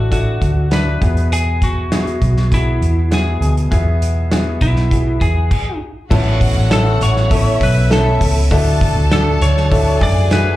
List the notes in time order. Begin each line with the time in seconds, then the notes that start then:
Already playing: A1 A2 D4 E4 F#4 A4
0.11 D4 E4 F#4 A4, kick, closed hi-hat
0.42 D2, kick, closed hi-hat
0.71 D4 E4 F#4 B4, snare, closed hi-hat
1.01 E2 B2 B3 E4 F#4 G#4, kick, closed hi-hat
1.17 closed hi-hat
1.32 G#4, closed hi-hat
1.62 F#4, kick, closed hi-hat
1.91 B3 E4 F#4 G#4, snare, closed hi-hat
2.07 closed hi-hat
2.22 B1, kick, closed hi-hat
2.37 snare
2.51 B3 E4 F#4 G#4, kick, closed hi-hat
2.81 E2, closed hi-hat
3.11 B3 E4 F#4 G#4, snare, closed hi-hat
3.41 D2 B2, closed hi-hat
3.57 closed hi-hat
3.71 E2 B3 E4 F#4 G#4, kick, closed hi-hat
4.02 closed hi-hat
4.31 B3 E4 F#4 G#4, snare, closed hi-hat
4.61 B1 E4, kick, closed hi-hat
4.76 snare
4.91 B3 E4 F#4 G#4, kick, closed hi-hat
5.21 E2 G#4, kick, closed hi-hat
5.51 kick, crash
6.10 A1 A2 C#3 E3 A3 B3 C#4 E4 F#4 A4 F#5, kick, crash
6.41 kick, hi-hat pedal, open hi-hat
6.56 A1
6.70 A3 B3 C#4 E4 A4, snare, hi-hat pedal, open hi-hat
7.01 A1 C#5, hi-hat pedal, open hi-hat
7.17 snare
7.30 A3 B3 C#4 E4 A4 E5, kick, hi-hat pedal, open hi-hat
7.61 B1 B4, kick, hi-hat pedal, open hi-hat
7.90 A3 B3 C#4 E4 A4, snare, hi-hat pedal, open hi-hat
8.21 C#2, kick, hi-hat pedal, open hi-hat
8.50 D2 A2 E3 A3 D4 E4 F#4 A4 A5, kick, hi-hat pedal, open hi-hat
8.81 kick, hi-hat pedal, open hi-hat
8.96 D2
9.11 A3 D4 E4 F#4 A4, snare, hi-hat pedal, open hi-hat
9.41 D2 C#5, hi-hat pedal, open hi-hat
9.57 snare
9.71 A3 D4 E4 F#4 A4, kick, hi-hat pedal, open hi-hat
10.00 F#2 G#4 D5 G#5, kick, hi-hat pedal, open hi-hat
10.31 A3 D4 E4 F#4 G#4 B4, snare, hi-hat pedal, open hi-hat